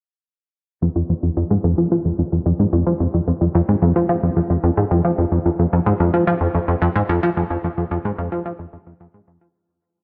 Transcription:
0.82 0.89 F2 medium
0.96 1.03 F2 medium
1.09 1.14 F2 medium
1.23 1.30 F2 medium
1.37 1.44 F2 medium
1.51 1.57 G#2 loud
1.64 1.74 F2 loud
1.78 1.88 F3 medium
1.92 1.98 F3 medium
2.05 2.12 F2 medium
2.19 2.23 F2 medium
2.32 2.39 F2 medium
2.46 2.53 F2 loud
2.59 2.66 G#2 medium
2.73 2.83 F2 loud
2.87 2.94 F3 medium
3.00 3.07 F2 medium
3.14 3.21 F2 medium
3.28 3.32 F2 medium
3.41 3.48 F2 medium
3.55 3.62 F2 loud
3.69 3.76 G#2 medium
3.82 3.92 F2 loud
3.96 4.06 F3 medium
4.09 4.16 F3 medium
4.23 4.30 F2 medium
4.36 4.41 F2 medium
4.50 4.57 F2 medium
4.64 4.71 F2 loud
4.77 4.84 G#2 loud
4.91 5.02 F2 medium
5.05 5.12 F3 medium
5.18 5.25 F2 medium
5.32 5.39 F2 medium
5.46 5.50 F2 medium
5.59 5.66 F2 medium
5.73 5.80 F2 loud
5.86 5.94 G#2 loud
6.00 6.11 F2 medium
6.14 6.24 F3 medium
6.27 6.34 F3 medium
6.41 6.48 F2 medium
6.55 6.59 F2 medium
6.68 6.75 F2 medium
6.82 6.89 F2 loud
6.96 7.03 G#2 medium
7.09 7.20 F2 loud
7.23 7.30 F3 medium
7.37 7.44 F2 medium
7.50 7.57 F2 medium
7.64 7.68 F2 medium
7.77 7.85 F2 medium
7.91 7.98 F2 loud
8.05 8.12 G#2 loud
8.18 8.29 F2 loud
8.32 8.42 F3 medium
8.46 8.53 F3 medium
8.59 8.66 F2 medium
8.73 8.77 F2 medium
8.87 8.94 F2 medium
9.00 9.07 F2 loud
9.14 9.21 G#2 medium
9.28 9.38 F2 loud
9.41 9.48 F3 medium

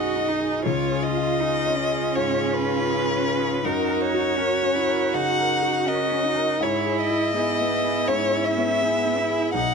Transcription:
0.00 0.67 F#2 soft
0.00 0.16 D#4 soft
0.00 0.61 D#4 soft
0.00 0.30 F#4 medium
0.00 0.67 F#4 soft
0.00 0.40 G#4 soft
0.00 0.64 D#5 medium
0.16 0.55 D#4 soft
0.28 0.65 D#4 medium
0.40 0.65 G#4 soft
0.65 2.11 C#2 medium
0.65 3.66 F4 medium
0.65 1.42 F4 medium
0.65 1.04 C#5 medium
0.92 1.31 G#4 soft
1.03 2.17 D#5 medium
1.15 1.55 F4 soft
1.40 1.77 D#4 medium
1.40 1.80 G#4 soft
1.66 2.05 C#4 soft
1.76 3.63 C#4 medium
1.91 2.30 G#4 soft
2.15 2.55 G#2 soft
2.15 2.54 C#5 medium
2.41 2.80 G#4 soft
2.53 3.66 B4 medium
2.66 3.05 F4 soft
2.90 3.29 G#4 soft
3.14 3.53 C#4 soft
3.40 3.64 G#4 soft
3.64 5.10 F#2 medium
3.64 4.38 D#4 medium
3.64 6.61 F#4 medium
3.64 4.02 A#4 medium
3.89 4.28 A#4 soft
4.00 5.15 C#5 medium
4.14 4.53 F#4 soft
4.37 4.76 C#4 medium
4.37 4.78 A#4 soft
4.62 5.04 C#4 soft
4.75 5.16 E4 medium
4.88 5.29 A#4 soft
5.14 5.53 C#3 soft
5.14 5.88 D#4 medium
5.14 5.89 F#5 medium
5.39 5.78 A#4 soft
5.62 6.02 F#4 soft
5.86 6.26 C#4 medium
5.86 6.26 A#4 soft
5.86 6.64 D#5 medium
6.11 6.51 C#4 soft
6.24 6.63 D#4 medium
6.35 6.61 A#4 soft
6.60 8.03 G#2 medium
6.60 9.50 E4 medium
6.60 7.36 E4 medium
6.60 6.99 C#5 medium
6.85 7.25 G#4 medium
7.00 8.09 D#5 medium
7.10 7.49 E4 soft
7.35 8.10 B3 medium
7.35 7.74 G#4 medium
7.60 7.99 B3 soft
7.84 8.23 G#4 soft
8.07 9.50 G#2 soft
8.07 8.84 C#4 medium
8.07 8.45 C#5 medium
8.31 8.71 E4 soft
8.44 9.53 E5 medium
8.57 8.96 B3 soft
8.82 9.20 B3 medium
8.82 9.20 G#4 medium
9.06 9.44 B3 soft
9.19 9.55 E4 medium
9.30 9.54 G#4 soft
9.53 9.74 B1 medium
9.53 9.74 D#4 medium
9.53 9.74 F#5 medium

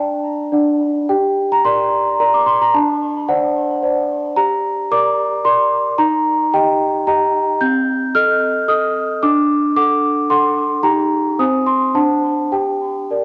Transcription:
0.00 0.52 D4 medium
0.00 0.48 D5 soft
0.00 0.48 G5 medium
0.00 0.81 A5 medium
0.52 1.07 D4 medium
0.52 1.05 D5 soft
0.52 1.06 F#5 soft
1.09 1.63 G4 medium
1.09 1.51 G5 medium
1.52 1.65 A#5 medium
1.65 2.16 A#4 soft
1.65 2.16 D5 medium
1.65 2.20 C6 loud
2.20 2.71 A#4 soft
2.20 2.71 D5 soft
2.20 2.33 A#5 medium
2.34 2.47 D6 medium
2.46 2.61 C6 loud
2.62 2.75 A#5 medium
2.74 3.28 D4 medium
2.74 3.29 A5 loud
3.29 3.79 C5 soft
3.29 3.79 D5 medium
3.29 4.37 F#5 loud
3.83 4.33 C5 soft
3.83 4.34 D5 soft
4.36 4.90 G4 medium
4.36 4.91 A#5 loud
4.91 5.41 A#4 medium
4.91 5.42 D5 medium
4.91 5.46 D6 loud
5.45 5.95 A#4 soft
5.45 5.95 D5 soft
5.45 5.99 C6 loud
5.98 6.52 D#4 medium
5.98 6.53 A#5 loud
6.54 7.03 G4 medium
6.54 7.03 D#5 medium
6.54 7.07 G5 loud
7.07 7.57 G4 medium
7.07 7.57 D#5 medium
7.07 7.61 A#5 loud
7.61 8.13 C4 medium
7.61 8.15 G6 loud
8.15 8.65 A4 medium
8.15 8.65 D#5 medium
8.15 8.69 F6 loud
8.68 9.18 A4 medium
8.68 9.19 D#5 medium
8.68 9.22 D#6 loud
9.23 9.75 D4 medium
9.23 9.75 D6 loud
9.76 10.26 A4 medium
9.76 10.26 F#5 medium
9.76 10.30 D6 loud
10.30 10.80 A4 medium
10.30 10.80 F#5 medium
10.30 10.57 C6 medium
10.83 11.37 D#4 medium
10.83 11.35 G4 medium
10.83 11.35 G5 medium
10.83 11.39 A#5 loud
11.39 11.94 C4 medium
11.39 11.92 C5 medium
11.39 11.92 G#5 soft
11.39 11.67 D#6 loud
11.66 11.95 C6 medium
11.95 12.50 D4 medium
11.95 12.48 C5 soft
11.95 12.49 F#5 soft
11.95 12.52 A5 medium
12.52 13.08 G4 soft
12.52 13.25 G5 medium
13.11 13.25 A#4 soft
13.11 13.25 D5 soft

